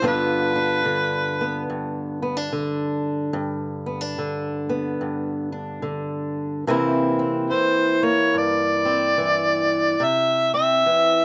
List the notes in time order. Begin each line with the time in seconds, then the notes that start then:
0.02 G2 D3 B3 D4 F4
0.07 B4
0.56 D4
0.85 D3
1.41 B3
1.70 G2
2.22 B3
2.37 D4
2.52 D3
3.33 G2
3.86 B3
4.01 D4
4.18 D3
4.69 B3
5.01 G2
5.52 D4
5.82 D3
6.67 C3 E3 A#3 C4 E4
7.19 C4
7.50 E3 C5
8.03 A#3 C#5
8.34 G2 D5
8.85 C4
9.18 E3
10.00 C3 E5
10.54 C4 E5
10.86 E3